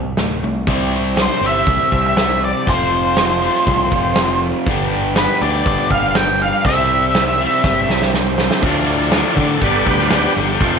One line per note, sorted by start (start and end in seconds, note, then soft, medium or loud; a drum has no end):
0.00 0.12 C2 medium
0.00 0.16 C3 medium
0.00 0.16 G3 medium
0.00 0.16 E5 medium
0.17 0.41 D1 medium
0.17 0.41 C3 medium
0.17 0.41 A3 medium
0.17 snare loud
0.17 open hi-hat soft
0.43 0.66 C2 medium
0.43 0.66 C3 medium
0.43 0.66 A3 medium
0.67 1.28 C2 medium
0.67 1.18 C3 medium
0.67 1.18 G3 medium
0.67 0.97 C4 medium
0.67 0.95 E4 medium
0.67 0.93 G4 medium
0.67 kick loud
0.67 crash loud
0.71 0.93 C5 medium
0.93 1.16 C4 medium
0.93 1.17 E4 medium
0.93 1.18 G4 medium
0.93 1.20 C5 medium
1.16 1.94 C4 medium
1.16 1.93 E4 medium
1.16 1.92 G4 medium
1.16 1.90 C5 medium
1.16 snare loud
1.16 open hi-hat medium
1.22 1.46 C5 medium
1.41 1.62 G1 medium
1.41 2.67 G3 medium
1.41 2.66 C4 medium
1.45 2.67 C3 medium
1.45 2.05 E5 loud
1.66 1.77 C2 medium
1.66 kick loud
1.66 open hi-hat medium
1.91 2.52 C2 medium
1.91 2.16 C4 medium
1.91 2.17 E4 medium
1.91 2.17 G4 medium
1.91 2.18 C5 medium
1.91 kick medium
2.07 2.41 E5 loud
2.15 2.65 C3 medium
2.15 2.66 G3 medium
2.15 2.43 C4 medium
2.15 2.43 E4 medium
2.15 2.42 G4 medium
2.15 2.41 C5 medium
2.15 snare loud
2.15 open hi-hat medium
2.42 2.67 C4 medium
2.42 2.67 E4 medium
2.42 2.67 G4 medium
2.42 2.66 C5 medium
2.42 2.67 D5 medium
2.65 3.48 F1 loud
2.65 3.17 F2 medium
2.65 3.17 C3 medium
2.65 2.94 F3 medium
2.65 2.92 A3 medium
2.65 2.91 C4 medium
2.65 2.90 F4 loud
2.65 4.39 C5 medium
2.65 kick loud
2.65 open hi-hat medium
2.91 3.15 F3 medium
2.91 3.16 A3 medium
2.91 3.17 C4 medium
2.91 3.18 F4 medium
3.16 3.93 F3 medium
3.16 3.92 A3 medium
3.16 3.91 C4 medium
3.16 3.89 F4 medium
3.16 snare loud
3.16 open hi-hat medium
3.42 4.67 F2 medium
3.42 4.66 C3 medium
3.42 4.65 F3 medium
3.66 3.87 C2 loud
3.66 kick loud
3.66 open hi-hat medium
3.90 4.52 F1 medium
3.90 4.16 F3 medium
3.90 4.16 A3 medium
3.90 4.17 C4 medium
3.90 4.18 F4 medium
3.90 kick medium
4.15 4.65 F2 medium
4.15 4.65 C3 medium
4.15 4.42 F3 medium
4.15 4.42 A3 medium
4.15 4.41 C4 medium
4.15 4.39 F4 medium
4.15 snare loud
4.15 open hi-hat medium
4.40 4.66 F3 medium
4.40 4.66 A3 medium
4.40 4.65 C4 medium
4.40 4.65 F4 medium
4.65 5.26 G1 medium
4.65 5.16 G2 medium
4.65 5.16 D3 medium
4.65 4.94 G3 medium
4.65 4.92 B3 medium
4.65 6.63 D4 medium
4.65 4.91 D4 loud
4.65 6.63 G4 medium
4.65 4.90 G4 loud
4.65 6.64 B4 medium
4.65 kick loud
4.65 open hi-hat medium
4.91 5.13 G3 medium
4.91 5.14 B3 medium
4.91 5.16 D4 medium
4.91 5.17 G4 medium
5.14 5.92 G3 medium
5.14 5.91 B3 medium
5.14 5.90 D4 medium
5.14 5.89 G4 medium
5.14 5.40 B4 medium
5.14 snare loud
5.14 open hi-hat medium
5.41 5.61 D2 loud
5.41 6.66 G2 medium
5.41 6.65 D3 medium
5.41 6.65 G3 medium
5.41 5.91 D5 medium
5.66 5.76 G1 medium
5.66 kick loud
5.66 open hi-hat medium
5.90 6.50 G1 medium
5.90 6.15 G3 medium
5.90 6.16 B3 medium
5.90 6.16 D4 medium
5.90 6.17 G4 medium
5.90 6.14 F5 loud
5.90 kick medium
6.15 6.63 G2 medium
6.15 6.64 D3 medium
6.15 6.42 G3 medium
6.15 6.41 B3 medium
6.15 6.40 D4 medium
6.15 6.39 G4 medium
6.15 6.39 G5 loud
6.15 snare loud
6.15 open hi-hat medium
6.40 6.65 G3 medium
6.40 6.65 B3 medium
6.40 6.64 D4 medium
6.40 6.64 G4 medium
6.40 6.65 F5 medium
6.65 7.45 C2 loud
6.65 7.15 C3 medium
6.65 7.15 G3 medium
6.65 6.93 C4 loud
6.65 8.62 E4 medium
6.65 6.92 E4 medium
6.65 8.62 G4 medium
6.65 6.92 G4 medium
6.65 8.62 C5 medium
6.65 6.90 C5 loud
6.65 8.10 E5 medium
6.65 kick loud
6.65 open hi-hat medium
6.91 7.14 C4 medium
6.91 7.15 E4 medium
6.91 7.15 G4 medium
6.91 7.17 C5 medium
7.15 7.91 C4 medium
7.15 7.90 E4 medium
7.15 7.89 G4 medium
7.15 7.87 C5 medium
7.15 snare loud
7.15 open hi-hat medium
7.41 8.64 C3 medium
7.41 8.63 G3 medium
7.41 8.63 C4 medium
7.64 7.84 G1 loud
7.64 kick loud
7.64 snare medium
7.88 8.48 C2 medium
7.88 8.14 E4 medium
7.88 8.15 G4 medium
7.88 8.16 C5 medium
7.88 snare medium
7.92 8.14 C4 medium
8.02 snare medium
8.13 8.62 C3 medium
8.13 8.62 G3 medium
8.13 8.41 C4 medium
8.13 8.40 E4 medium
8.13 8.39 G4 medium
8.13 snare medium
8.17 8.37 C5 medium
8.38 8.64 C4 medium
8.38 8.63 E4 medium
8.38 8.63 G4 medium
8.38 8.62 C5 medium
8.38 snare loud
8.51 snare medium
8.62 9.22 D2 loud
8.62 9.11 D2 medium
8.62 9.12 A2 medium
8.62 9.13 D3 loud
8.62 9.34 F3 medium
8.62 9.34 A3 medium
8.62 9.35 D4 medium
8.62 kick loud
8.62 crash loud
8.62 crash medium
8.87 crash medium
9.12 9.35 D2 medium
9.12 9.37 A2 medium
9.12 9.37 D3 medium
9.12 snare loud
9.12 crash medium
9.34 9.60 D2 medium
9.34 9.61 A2 medium
9.34 9.57 D3 medium
9.34 9.61 D3 medium
9.34 9.37 C#5 medium
9.34 kick medium
9.34 crash medium
9.40 9.51 D5 loud
9.53 9.63 A4 medium
9.61 9.82 G1 loud
9.61 10.09 G2 medium
9.61 10.10 D3 loud
9.61 10.11 G3 loud
9.61 10.33 G3 medium
9.61 10.34 B3 medium
9.61 10.34 D4 medium
9.61 kick loud
9.61 crash medium
9.66 9.76 D5 medium
9.76 9.87 A4 medium
9.86 10.26 D2 medium
9.86 kick medium
9.86 crash medium
9.91 10.01 G4 medium
9.99 10.12 F4 medium
9.99 snare soft
10.10 10.35 G2 medium
10.10 10.36 D3 medium
10.10 10.36 G3 medium
10.10 snare loud
10.10 crash medium
10.17 10.79 G4 medium
10.36 10.57 G1 loud
10.36 10.60 G2 medium
10.36 10.60 D3 medium
10.36 10.61 G3 medium
10.36 snare soft
10.36 crash medium
10.60 10.79 F1 loud
10.60 10.79 F2 medium
10.60 10.79 C3 loud
10.60 10.79 F3 loud
10.60 10.79 F3 medium
10.60 10.79 A3 soft
10.60 10.79 C4 medium
10.60 kick loud
10.60 crash medium